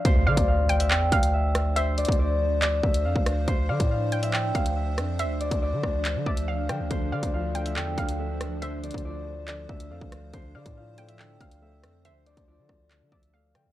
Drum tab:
HH |x--------x--------x--x--------x--x--------x-----|x-----x-x-x-------------x--------x--------x-----|x--------x--------x--x--------x--x--------x-----|x-----x--x--------------x--------x--------x-----|
CP |------------------------x-----------------------|------------------------x-----------------------|------------------------x-----------------------|------------------------x-----------------------|
SD |------------------------------------------r-----|------------------------------------------r-----|------------------------------------------r-----|------------------r-----------------------r-----|
BD |o--------o--------------------o-----------------|---------o--------------------o--------o--------|o--------o--------------------o-----------------|---------o--------o-----------o-----------------|

HH |x--------x--------x--x--------x--x--------x-----|x-----x-x-x-------------x--------x--------x-----|x--------x--------x--x--------x--x--------x-----|x-----x--x--------------x--------x--------x-----|
CP |------------------------x-----------------------|------------------------x-----------------------|------------------------x-----------------------|------------------------x-----------------------|
SD |------------------------------------------r-----|------------------------------------------r-----|------------------------------------------r-----|------------------r-----------------------r-----|
BD |o--------o--------------------o-----------------|---------o--------------------o--------o--------|o--------o--------------------o-----------------|---------o--------o-----------o-----------------|